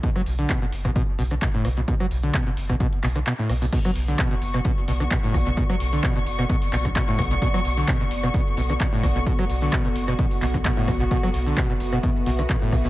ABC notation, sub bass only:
X:1
M:4/4
L:1/8
Q:"Swing 16ths" 1/4=130
K:Bm
V:1 name="Sub bass" clef=bass
z B,,, z F,,, z B,,, z B,,, | z B,,, z F,,, z B,,, z B,,, | z B,,, z F,,, z B,,, z B,,, | z B,,, z F,,, z B,,, z B,,, |
z B,,, z F,,, z B,,, z B,,, | z B,,, z F,,, z B,,, z B,,, | z B,,, z F,,, z B,,, z B,,, |]